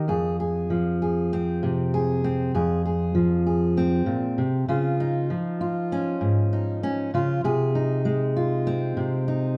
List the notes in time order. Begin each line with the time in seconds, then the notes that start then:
0.08 F2 G#4
0.40 G#4
0.70 F3
1.02 G#4
1.33 C4
1.63 C3
1.94 G#4
2.24 C4
2.54 F2 G#4
2.85 G#4
3.15 F3
3.47 G#4
3.77 C4
4.06 A#2
4.38 C3
4.68 C#3 F4
5.00 D#4
5.30 F3
5.61 F4
5.92 C#4
6.21 G#2
6.53 D#4
6.83 C#4
7.14 C#3 F4
7.44 C3 G#4
7.75 D#4
8.05 G#3
8.36 F4
8.67 C4
8.97 C3
9.28 D#4